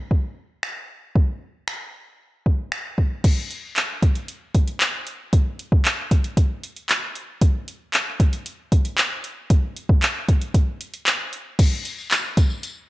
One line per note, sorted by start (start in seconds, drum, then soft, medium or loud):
0.11 kick medium
0.63 finger snap loud
1.16 kick loud
1.68 finger snap loud
2.46 kick medium
2.72 finger snap loud
2.98 kick medium
3.24 kick loud
3.24 closed hi-hat medium
3.24 crash loud
3.51 closed hi-hat medium
3.76 clap loud
3.76 closed hi-hat medium
4.02 kick medium
4.02 closed hi-hat medium
4.15 closed hi-hat medium
4.28 closed hi-hat medium
4.55 kick medium
4.55 closed hi-hat medium
4.68 closed hi-hat medium
4.80 clap loud
4.80 closed hi-hat loud
5.07 closed hi-hat medium
5.33 kick loud
5.33 closed hi-hat loud
5.59 closed hi-hat medium
5.72 kick loud
5.85 clap loud
5.85 closed hi-hat medium
6.11 kick medium
6.11 closed hi-hat medium
6.24 closed hi-hat medium
6.37 kick medium
6.37 closed hi-hat medium
6.63 closed hi-hat medium
6.76 closed hi-hat soft
6.89 clap loud
6.89 closed hi-hat medium
7.15 closed hi-hat medium
7.41 kick loud
7.41 closed hi-hat loud
7.68 closed hi-hat medium
7.93 clap loud
7.93 closed hi-hat medium
8.20 kick medium
8.20 closed hi-hat medium
8.33 closed hi-hat medium
8.46 closed hi-hat medium
8.72 kick medium
8.72 closed hi-hat medium
8.85 closed hi-hat medium
8.98 clap loud
8.98 closed hi-hat medium
9.24 closed hi-hat medium
9.50 kick loud
9.50 closed hi-hat loud
9.77 closed hi-hat medium
9.89 kick loud
10.02 clap loud
10.02 closed hi-hat medium
10.29 kick medium
10.29 closed hi-hat medium
10.42 closed hi-hat medium
10.54 kick medium
10.54 closed hi-hat medium
10.81 closed hi-hat medium
10.94 closed hi-hat medium
11.07 clap loud
11.07 closed hi-hat loud
11.33 closed hi-hat medium
11.59 kick loud
11.59 closed hi-hat loud
11.59 crash loud
11.59 tambourine medium
11.85 closed hi-hat medium
11.85 tambourine medium
11.98 tambourine soft
12.11 clap loud
12.11 closed hi-hat medium
12.11 tambourine medium
12.37 kick medium
12.37 closed hi-hat medium
12.37 tambourine soft
12.50 tambourine soft
12.63 closed hi-hat medium
12.63 tambourine medium